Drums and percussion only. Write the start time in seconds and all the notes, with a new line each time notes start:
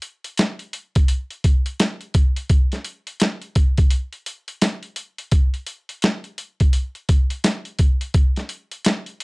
0.02 closed hi-hat
0.24 closed hi-hat
0.38 snare, closed hi-hat
0.59 closed hi-hat
0.73 closed hi-hat
0.95 kick, closed hi-hat
1.08 closed hi-hat
1.30 closed hi-hat
1.44 kick, closed hi-hat
1.66 closed hi-hat
1.80 snare, closed hi-hat
2.01 closed hi-hat
2.14 kick, closed hi-hat
2.36 closed hi-hat
2.49 kick, closed hi-hat
2.72 snare, closed hi-hat
2.85 closed hi-hat
3.07 closed hi-hat
3.20 snare, closed hi-hat
3.42 closed hi-hat
3.55 kick, closed hi-hat
3.78 kick, closed hi-hat
3.91 closed hi-hat
4.13 closed hi-hat
4.26 closed hi-hat
4.48 closed hi-hat
4.62 snare, closed hi-hat
4.83 closed hi-hat
4.96 closed hi-hat
5.18 closed hi-hat
5.31 kick, closed hi-hat
5.54 closed hi-hat
5.67 closed hi-hat
5.89 closed hi-hat
6.02 snare, closed hi-hat
6.24 closed hi-hat
6.38 closed hi-hat
6.60 kick, closed hi-hat
6.73 closed hi-hat
6.95 closed hi-hat
7.09 kick, closed hi-hat
7.30 closed hi-hat
7.44 snare, closed hi-hat
7.65 closed hi-hat
7.79 kick, closed hi-hat
8.01 closed hi-hat
8.14 kick, closed hi-hat
8.36 snare, closed hi-hat
8.49 closed hi-hat
8.71 closed hi-hat
8.85 snare, closed hi-hat
9.06 closed hi-hat
9.20 closed hi-hat